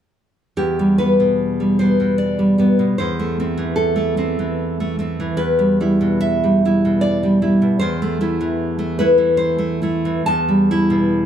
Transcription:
nylon-string guitar
0.57 E2 G4
0.79 G3
0.98 G3 B3 B4
1.20 B2
1.60 G3
1.79 G3 B3 C5
2.00 B2
2.18 D5
2.39 G3
2.58 G3 B3
2.79 B2
2.98 E2 C5
3.19 A3
3.40 A3 C4
3.58 E3
3.76 A4
3.96 A3
4.17 A3 C4
4.39 E3
4.80 A3
4.99 A3 C4
5.20 E3
5.37 E2 B4
5.59 G3
5.80 G3 E4
6.01 B2
6.21 E5
6.44 G3
6.65 G3 E4
6.85 B2
7.01 D5
7.23 G3
7.42 G3 E4
7.62 B2
7.79 E2 C5
8.02 A3
8.21 A3 E4
8.41 E3
8.79 A3
8.99 A3 E4 B4
9.18 E3
9.37 C5
9.58 A3
9.82 A3 E4
10.05 E3
10.26 E2 A5
10.49 G3
10.71 G3 E4
10.90 B2

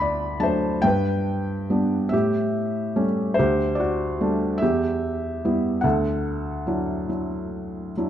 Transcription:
felt piano
Already playing: D2 D5 A5
0.00 D5 B5
0.40 F#3 A3 D4 C5 A5
0.82 G2 G5
0.86 B4
1.70 G3 B3 D4
2.09 A2 E5
2.13 G4
2.96 G3 A3 C#4
3.34 C5
3.39 D2 G4
3.75 D5
3.80 F#4
4.21 G3 A3 D4
4.58 E5
4.62 E2 G4
5.45 G3 B3 E4
5.81 D2 A4 F#5
6.67 F#3 D4 E4
7.09 F#3 D4 E4
7.97 F#3 D4 E4

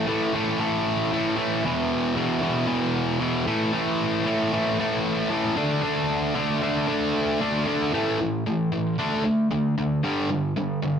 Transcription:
distorted electric guitar
0.07 A2 E3 A3
0.34 A2 E3 A3
0.59 A2 E3 A3
1.12 A2 E3 A3
1.37 A2 E3 A3
1.65 E2 B2 E3
2.16 E2 B2 E3
2.42 E2 B2 E3
2.67 E2 B2 E3
3.20 E2 B2 E3
3.46 A2 E3 A3
3.73 A2 E3 A3
4.25 A2 E3 A3
4.52 A2 E3 A3
4.79 A2 E3 A3
5.30 A2 E3 A3
5.56 D3 A3 D4
5.82 D3 A3 D4
6.35 D3 A3 D4
6.62 D3 A3 D4
6.87 D3 A3 D4
7.40 D3 A3 D4
7.66 D3 A3 D4
7.93 A2 E3 A3
8.20 A2 E3
8.46 A2 E3
8.72 A2 E3
8.99 D3 A3 D4
9.25 D3 A3
9.51 D3 A3
9.78 D3 A3
10.03 G2 D3 G3
10.30 G2 D3
10.56 G2 D3
10.82 G2 D3

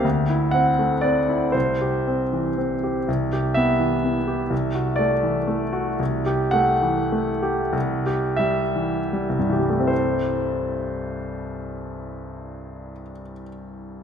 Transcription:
grand piano
0.04 D2
0.29 E4
0.51 C4 F#5
0.79 A3
1.01 C4 D5
1.29 E4
1.52 C2 C5
1.81 G4
2.08 C4
2.33 E3
2.58 C4
2.83 G4
3.08 C2
3.33 G4
3.54 B3 E5
3.79 E3
4.04 B3
4.27 G4
4.50 C2
4.75 F#4
4.96 A3 D5
5.23 E3
5.47 A3
5.73 F#4
5.99 C2
6.26 G4
6.51 A3 F#5
6.82 E3
7.12 A3
7.43 G4
7.73 C2
8.06 G4
8.36 G3 E5
8.76 E3
9.13 G3
9.29 C2
9.39 G2
9.49 E3 G4
9.60 G3
9.70 A3
9.80 C4
9.87 C5

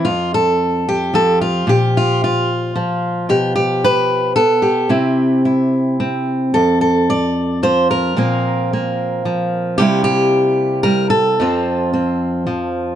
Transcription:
steel-string acoustic guitar
0.05 F2 F4
0.34 A4
0.89 G4
1.14 F3 A4
1.41 F4
1.67 A#2 G4
1.97 F4
2.24 F4
2.76 F3
3.29 B2 G4
3.56 G4
3.84 B4
4.36 B3 A4
4.62 G4
4.89 C3 C4 E4
5.45 E4
6.00 C4
6.54 F2 A4
6.81 A4
7.10 D5
7.63 F3 C5
7.91 A#4
8.17 A#2 F3 A#3 C4
8.73 A#3
9.25 F3
9.78 C3 G3 A#3 E4 G4
10.04 G4
10.83 G3 A#4
11.10 A4
11.40 F2 F3 C4 F4
11.94 C4
12.47 F3

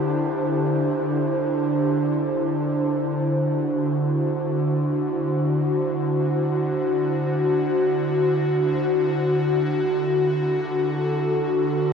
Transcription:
analog synth pad
Already playing: D3 D4 E4 G4 C5
3.36 F#4
10.55 A4
11.72 B4

